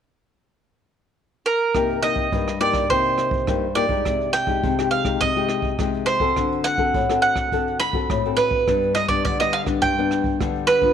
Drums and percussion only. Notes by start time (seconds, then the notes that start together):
1.75 kick, cross-stick, closed hi-hat
1.90 closed hi-hat
2.02 cross-stick, closed hi-hat
2.16 kick
2.32 kick, closed hi-hat
2.48 cross-stick, closed hi-hat
2.60 closed hi-hat
2.73 kick, cross-stick, closed hi-hat
2.90 kick, closed hi-hat
3.05 closed hi-hat
3.18 cross-stick, closed hi-hat
3.31 kick
3.47 kick, cross-stick, closed hi-hat
3.75 cross-stick, closed hi-hat
3.89 kick
4.05 kick, cross-stick, closed hi-hat
4.21 closed hi-hat
4.34 cross-stick, closed hi-hat
4.47 kick, closed hi-hat
4.64 kick, closed hi-hat
4.79 cross-stick
4.91 closed hi-hat
5.05 kick, cross-stick, closed hi-hat
5.21 kick, closed hi-hat
5.36 closed hi-hat
5.49 cross-stick, closed hi-hat
5.62 kick, closed hi-hat
5.79 kick, cross-stick, closed hi-hat
5.94 closed hi-hat
6.07 cross-stick, closed hi-hat
6.20 kick, closed hi-hat
6.36 kick, cross-stick, closed hi-hat
6.52 closed hi-hat
6.64 cross-stick
6.78 kick
6.94 kick, closed hi-hat
7.09 cross-stick, closed hi-hat
7.22 closed hi-hat
7.36 kick, cross-stick, closed hi-hat
7.52 kick, closed hi-hat
7.68 closed hi-hat
7.80 cross-stick, closed hi-hat
7.93 kick
8.10 kick, cross-stick, closed hi-hat
8.38 cross-stick, closed hi-hat
8.51 kick
8.68 kick, cross-stick, closed hi-hat
8.83 closed hi-hat
8.96 cross-stick, closed hi-hat
9.09 kick
9.25 kick, closed hi-hat
9.41 cross-stick
9.53 closed hi-hat
9.66 kick, cross-stick, closed hi-hat
9.83 kick, closed hi-hat
9.98 closed hi-hat
10.11 cross-stick, closed hi-hat
10.24 kick, closed hi-hat
10.41 kick, cross-stick, closed hi-hat
10.55 closed hi-hat
10.68 cross-stick
10.82 kick, closed hi-hat